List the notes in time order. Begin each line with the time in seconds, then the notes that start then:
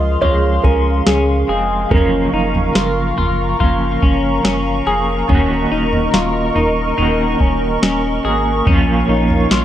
Already playing: C#2 C#3 F3 G#3 F4 G#4 A#4 D#5 F5 C6
0.21 C#2 C#3 F3 G#3 F4 C#5, floor tom
0.63 C#2 C#4 A#4 F5, kick
1.06 C#2 C#4 G#4, snare
1.48 F1 G#3 C4 G#4 D#5
1.53 F3
1.90 F#1 F#2 C#3 F3 C#4 A#4 A#5 C#6, kick, floor tom
1.95 A#3 C#4
2.33 F#1 D#4
2.55 floor tom
2.75 F#1 F4 A#4, snare
3.18 F#1 F4, floor tom
3.59 F#1 C#3 F3 A#3 F4, kick, floor tom
3.64 C#4
4.02 F#1 C#4 C#5, kick
4.44 F#1 C#4, snare
4.86 F1 A#3 C#4 G#4
4.91 F3
5.28 D#1 D#3 A#3 C#4 D#5, kick, floor tom
5.33 C#4 F#4
5.72 D#1 D#4
5.93 floor tom
6.14 D#1 F4, snare
6.56 D#1 D#4 A#4, floor tom
6.97 D#1 D#3 A#3 C#4 D#4, floor tom
7.02 F#4
7.40 D#1 C#4, kick
7.83 D#1 C#4, snare
8.24 G#1 C#4 F#4 G#4
8.28 A#3
8.65 A#1 A#2 F3 A#3 C#4 C#5 F5, kick, floor tom
8.71 C#4 F4
9.09 A#1 D#4
9.30 floor tom
9.51 A#1 F4, snare